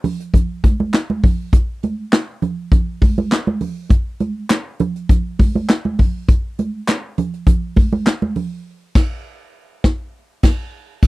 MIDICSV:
0, 0, Header, 1, 2, 480
1, 0, Start_track
1, 0, Tempo, 593472
1, 1237, Time_signature, 4, 2, 24, 8
1, 8953, End_track
2, 0, Start_track
2, 0, Title_t, "Drums"
2, 33, Note_on_c, 9, 62, 40
2, 33, Note_on_c, 9, 64, 80
2, 35, Note_on_c, 9, 46, 82
2, 114, Note_off_c, 9, 62, 0
2, 114, Note_off_c, 9, 64, 0
2, 116, Note_off_c, 9, 46, 0
2, 162, Note_on_c, 9, 42, 49
2, 242, Note_off_c, 9, 42, 0
2, 272, Note_on_c, 9, 36, 82
2, 276, Note_on_c, 9, 42, 95
2, 277, Note_on_c, 9, 62, 32
2, 277, Note_on_c, 9, 64, 72
2, 353, Note_off_c, 9, 36, 0
2, 357, Note_off_c, 9, 42, 0
2, 358, Note_off_c, 9, 62, 0
2, 358, Note_off_c, 9, 64, 0
2, 516, Note_on_c, 9, 62, 41
2, 516, Note_on_c, 9, 63, 62
2, 517, Note_on_c, 9, 36, 89
2, 517, Note_on_c, 9, 42, 82
2, 596, Note_off_c, 9, 62, 0
2, 596, Note_off_c, 9, 63, 0
2, 597, Note_off_c, 9, 42, 0
2, 598, Note_off_c, 9, 36, 0
2, 647, Note_on_c, 9, 63, 78
2, 728, Note_off_c, 9, 63, 0
2, 755, Note_on_c, 9, 42, 85
2, 760, Note_on_c, 9, 38, 100
2, 760, Note_on_c, 9, 39, 79
2, 761, Note_on_c, 9, 62, 37
2, 836, Note_off_c, 9, 42, 0
2, 841, Note_off_c, 9, 38, 0
2, 841, Note_off_c, 9, 39, 0
2, 841, Note_off_c, 9, 62, 0
2, 889, Note_on_c, 9, 63, 75
2, 969, Note_off_c, 9, 63, 0
2, 993, Note_on_c, 9, 46, 82
2, 1000, Note_on_c, 9, 36, 94
2, 1002, Note_on_c, 9, 62, 35
2, 1002, Note_on_c, 9, 64, 65
2, 1074, Note_off_c, 9, 46, 0
2, 1081, Note_off_c, 9, 36, 0
2, 1083, Note_off_c, 9, 62, 0
2, 1083, Note_off_c, 9, 64, 0
2, 1236, Note_on_c, 9, 36, 110
2, 1236, Note_on_c, 9, 42, 106
2, 1236, Note_on_c, 9, 62, 33
2, 1317, Note_off_c, 9, 36, 0
2, 1317, Note_off_c, 9, 42, 0
2, 1317, Note_off_c, 9, 62, 0
2, 1479, Note_on_c, 9, 42, 72
2, 1486, Note_on_c, 9, 63, 66
2, 1559, Note_off_c, 9, 42, 0
2, 1566, Note_off_c, 9, 63, 0
2, 1716, Note_on_c, 9, 42, 82
2, 1722, Note_on_c, 9, 38, 125
2, 1722, Note_on_c, 9, 39, 85
2, 1797, Note_off_c, 9, 42, 0
2, 1803, Note_off_c, 9, 38, 0
2, 1803, Note_off_c, 9, 39, 0
2, 1959, Note_on_c, 9, 64, 82
2, 1962, Note_on_c, 9, 42, 73
2, 2040, Note_off_c, 9, 64, 0
2, 2043, Note_off_c, 9, 42, 0
2, 2197, Note_on_c, 9, 36, 100
2, 2201, Note_on_c, 9, 42, 80
2, 2202, Note_on_c, 9, 64, 69
2, 2278, Note_off_c, 9, 36, 0
2, 2282, Note_off_c, 9, 42, 0
2, 2283, Note_off_c, 9, 64, 0
2, 2440, Note_on_c, 9, 46, 86
2, 2440, Note_on_c, 9, 62, 41
2, 2440, Note_on_c, 9, 63, 67
2, 2441, Note_on_c, 9, 36, 96
2, 2520, Note_off_c, 9, 46, 0
2, 2520, Note_off_c, 9, 62, 0
2, 2520, Note_off_c, 9, 63, 0
2, 2522, Note_off_c, 9, 36, 0
2, 2571, Note_on_c, 9, 63, 85
2, 2652, Note_off_c, 9, 63, 0
2, 2679, Note_on_c, 9, 62, 34
2, 2682, Note_on_c, 9, 42, 79
2, 2687, Note_on_c, 9, 38, 95
2, 2687, Note_on_c, 9, 39, 84
2, 2760, Note_off_c, 9, 62, 0
2, 2763, Note_off_c, 9, 42, 0
2, 2767, Note_off_c, 9, 38, 0
2, 2767, Note_off_c, 9, 39, 0
2, 2808, Note_on_c, 9, 63, 81
2, 2889, Note_off_c, 9, 63, 0
2, 2915, Note_on_c, 9, 46, 80
2, 2919, Note_on_c, 9, 62, 29
2, 2919, Note_on_c, 9, 64, 67
2, 2996, Note_off_c, 9, 46, 0
2, 3000, Note_off_c, 9, 62, 0
2, 3000, Note_off_c, 9, 64, 0
2, 3151, Note_on_c, 9, 62, 37
2, 3158, Note_on_c, 9, 36, 106
2, 3158, Note_on_c, 9, 42, 106
2, 3232, Note_off_c, 9, 62, 0
2, 3239, Note_off_c, 9, 36, 0
2, 3239, Note_off_c, 9, 42, 0
2, 3397, Note_on_c, 9, 42, 69
2, 3401, Note_on_c, 9, 62, 29
2, 3401, Note_on_c, 9, 63, 67
2, 3477, Note_off_c, 9, 42, 0
2, 3482, Note_off_c, 9, 62, 0
2, 3482, Note_off_c, 9, 63, 0
2, 3635, Note_on_c, 9, 42, 91
2, 3642, Note_on_c, 9, 38, 124
2, 3642, Note_on_c, 9, 39, 101
2, 3643, Note_on_c, 9, 62, 33
2, 3716, Note_off_c, 9, 42, 0
2, 3722, Note_off_c, 9, 38, 0
2, 3722, Note_off_c, 9, 39, 0
2, 3723, Note_off_c, 9, 62, 0
2, 3876, Note_on_c, 9, 42, 77
2, 3884, Note_on_c, 9, 62, 38
2, 3884, Note_on_c, 9, 64, 90
2, 3957, Note_off_c, 9, 42, 0
2, 3965, Note_off_c, 9, 62, 0
2, 3965, Note_off_c, 9, 64, 0
2, 4009, Note_on_c, 9, 42, 54
2, 4090, Note_off_c, 9, 42, 0
2, 4120, Note_on_c, 9, 36, 97
2, 4123, Note_on_c, 9, 42, 101
2, 4123, Note_on_c, 9, 62, 34
2, 4123, Note_on_c, 9, 64, 71
2, 4200, Note_off_c, 9, 36, 0
2, 4204, Note_off_c, 9, 42, 0
2, 4204, Note_off_c, 9, 62, 0
2, 4204, Note_off_c, 9, 64, 0
2, 4361, Note_on_c, 9, 62, 38
2, 4361, Note_on_c, 9, 63, 59
2, 4362, Note_on_c, 9, 46, 78
2, 4363, Note_on_c, 9, 36, 92
2, 4441, Note_off_c, 9, 62, 0
2, 4441, Note_off_c, 9, 63, 0
2, 4443, Note_off_c, 9, 46, 0
2, 4444, Note_off_c, 9, 36, 0
2, 4492, Note_on_c, 9, 63, 81
2, 4573, Note_off_c, 9, 63, 0
2, 4601, Note_on_c, 9, 62, 35
2, 4603, Note_on_c, 9, 42, 79
2, 4607, Note_on_c, 9, 38, 93
2, 4607, Note_on_c, 9, 39, 79
2, 4682, Note_off_c, 9, 62, 0
2, 4683, Note_off_c, 9, 42, 0
2, 4688, Note_off_c, 9, 38, 0
2, 4688, Note_off_c, 9, 39, 0
2, 4733, Note_on_c, 9, 63, 90
2, 4813, Note_off_c, 9, 63, 0
2, 4840, Note_on_c, 9, 46, 85
2, 4843, Note_on_c, 9, 62, 32
2, 4843, Note_on_c, 9, 64, 64
2, 4847, Note_on_c, 9, 36, 89
2, 4921, Note_off_c, 9, 46, 0
2, 4924, Note_off_c, 9, 62, 0
2, 4924, Note_off_c, 9, 64, 0
2, 4928, Note_off_c, 9, 36, 0
2, 5082, Note_on_c, 9, 62, 35
2, 5084, Note_on_c, 9, 36, 117
2, 5086, Note_on_c, 9, 42, 97
2, 5163, Note_off_c, 9, 62, 0
2, 5165, Note_off_c, 9, 36, 0
2, 5167, Note_off_c, 9, 42, 0
2, 5325, Note_on_c, 9, 42, 70
2, 5330, Note_on_c, 9, 63, 65
2, 5406, Note_off_c, 9, 42, 0
2, 5411, Note_off_c, 9, 63, 0
2, 5562, Note_on_c, 9, 42, 92
2, 5568, Note_on_c, 9, 38, 117
2, 5568, Note_on_c, 9, 39, 93
2, 5642, Note_off_c, 9, 42, 0
2, 5648, Note_off_c, 9, 38, 0
2, 5648, Note_off_c, 9, 39, 0
2, 5804, Note_on_c, 9, 42, 79
2, 5809, Note_on_c, 9, 64, 85
2, 5885, Note_off_c, 9, 42, 0
2, 5889, Note_off_c, 9, 64, 0
2, 5932, Note_on_c, 9, 42, 48
2, 6013, Note_off_c, 9, 42, 0
2, 6039, Note_on_c, 9, 36, 96
2, 6041, Note_on_c, 9, 42, 89
2, 6045, Note_on_c, 9, 62, 32
2, 6045, Note_on_c, 9, 64, 70
2, 6120, Note_off_c, 9, 36, 0
2, 6122, Note_off_c, 9, 42, 0
2, 6126, Note_off_c, 9, 62, 0
2, 6126, Note_off_c, 9, 64, 0
2, 6279, Note_on_c, 9, 46, 78
2, 6279, Note_on_c, 9, 62, 41
2, 6279, Note_on_c, 9, 63, 65
2, 6283, Note_on_c, 9, 36, 94
2, 6359, Note_off_c, 9, 46, 0
2, 6360, Note_off_c, 9, 62, 0
2, 6360, Note_off_c, 9, 63, 0
2, 6364, Note_off_c, 9, 36, 0
2, 6410, Note_on_c, 9, 63, 91
2, 6491, Note_off_c, 9, 63, 0
2, 6521, Note_on_c, 9, 42, 87
2, 6522, Note_on_c, 9, 62, 38
2, 6525, Note_on_c, 9, 38, 106
2, 6525, Note_on_c, 9, 39, 82
2, 6601, Note_off_c, 9, 42, 0
2, 6603, Note_off_c, 9, 62, 0
2, 6606, Note_off_c, 9, 38, 0
2, 6606, Note_off_c, 9, 39, 0
2, 6650, Note_on_c, 9, 63, 88
2, 6731, Note_off_c, 9, 63, 0
2, 6756, Note_on_c, 9, 46, 79
2, 6762, Note_on_c, 9, 62, 28
2, 6762, Note_on_c, 9, 64, 69
2, 6837, Note_off_c, 9, 46, 0
2, 6843, Note_off_c, 9, 62, 0
2, 6843, Note_off_c, 9, 64, 0
2, 7239, Note_on_c, 9, 49, 83
2, 7242, Note_on_c, 9, 36, 109
2, 7243, Note_on_c, 9, 38, 101
2, 7320, Note_off_c, 9, 49, 0
2, 7322, Note_off_c, 9, 36, 0
2, 7324, Note_off_c, 9, 38, 0
2, 7959, Note_on_c, 9, 38, 115
2, 7960, Note_on_c, 9, 36, 101
2, 8040, Note_off_c, 9, 38, 0
2, 8041, Note_off_c, 9, 36, 0
2, 8435, Note_on_c, 9, 49, 89
2, 8439, Note_on_c, 9, 36, 101
2, 8439, Note_on_c, 9, 38, 99
2, 8516, Note_off_c, 9, 49, 0
2, 8520, Note_off_c, 9, 36, 0
2, 8520, Note_off_c, 9, 38, 0
2, 8916, Note_on_c, 9, 49, 93
2, 8918, Note_on_c, 9, 36, 109
2, 8953, Note_off_c, 9, 36, 0
2, 8953, Note_off_c, 9, 49, 0
2, 8953, End_track
0, 0, End_of_file